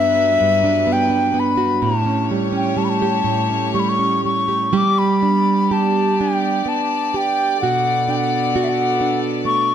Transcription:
Already playing: nylon-string guitar G2 B3 D4 F#4, string section F#3 G3 B4, flute E5
0.41 nylon-string guitar G2
0.64 nylon-string guitar D4
0.87 nylon-string guitar B3
0.92 flute G5
1.10 nylon-string guitar D4
1.34 nylon-string guitar B3
1.40 flute B5
1.57 nylon-string guitar F#4
1.82 nylon-string guitar A2, string section A3 G4 C#5, flute A5
2.06 nylon-string guitar C#4
2.31 nylon-string guitar G3
2.53 nylon-string guitar C#4
2.57 flute G5
2.77 nylon-string guitar G3, flute A5
2.84 flute B5
2.89 flute A5
3.02 nylon-string guitar G4
3.24 nylon-string guitar A2
3.51 nylon-string guitar C#4
3.74 nylon-string guitar G3, flute C#6
3.80 flute B5
3.89 flute C#6
3.99 nylon-string guitar C#4
4.25 nylon-string guitar G3, flute C#6
4.48 nylon-string guitar G4
4.73 nylon-string guitar G3 G4, string section B3 G4 D5
4.77 flute D6
4.99 flute B5
5.23 nylon-string guitar D4
5.71 nylon-string guitar G4, flute A5
6.21 nylon-string guitar D4, flute G5
6.66 nylon-string guitar B3, flute A5
7.14 nylon-string guitar G4, flute G5
7.58 string section B3 A4, flute F#5
7.62 nylon-string guitar B2 F#4
8.08 nylon-string guitar D4, flute G5
8.17 flute F#5
8.56 nylon-string guitar F#4
8.64 flute E5
8.69 flute F#5
9.01 nylon-string guitar D4
9.45 nylon-string guitar A3, flute C#6

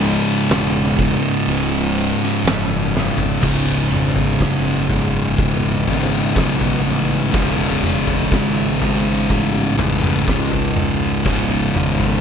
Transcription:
Already playing: fingered electric bass C#1, distorted electric guitar C#2 G#2 C#3
0.00 open hi-hat
0.49 fingered electric bass E1, snare, open hi-hat
0.96 distorted electric guitar C#2 G#2 C#3, kick, open hi-hat
1.48 fingered electric bass C#1, open hi-hat
1.96 open hi-hat
2.23 snare
2.44 fingered electric bass F#1, snare, open hi-hat
2.97 snare
3.18 floor tom
3.42 fingered electric bass C#1, distorted electric guitar C#2 G#2 C#3, kick, floor tom, crash
3.92 fingered electric bass G#1, mid tom
4.16 floor tom
4.41 fingered electric bass F#1, kick, snare
4.87 distorted electric guitar G#2 C#3, floor tom
4.92 distorted electric guitar C#2
5.38 fingered electric bass E1, kick
5.87 fingered electric bass G#1, distorted electric guitar C#2 G#2 C#3, floor tom
6.35 fingered electric bass B1, distorted electric guitar C#2 G#2 C#3, kick, snare
6.61 floor tom
6.86 fingered electric bass A1
7.32 fingered electric bass E1, distorted electric guitar C#2 G#2 C#3, kick, floor tom
7.83 mid tom
8.07 floor tom
8.31 fingered electric bass G#1, kick, snare
8.79 distorted electric guitar C#2 G#2 C#3, floor tom
9.30 fingered electric bass A1, kick
9.78 distorted electric guitar C#2 G#2 C#3, floor tom, mid tom
10.03 mid tom
10.26 distorted electric guitar C#2 G#2 C#3, fingered electric bass C#2, kick, snare
10.52 floor tom
10.76 mid tom
11.25 fingered electric bass C#1, distorted electric guitar C#2 G#2, kick, floor tom
11.30 distorted electric guitar C#3
11.75 fingered electric bass G#1, mid tom
12.00 floor tom

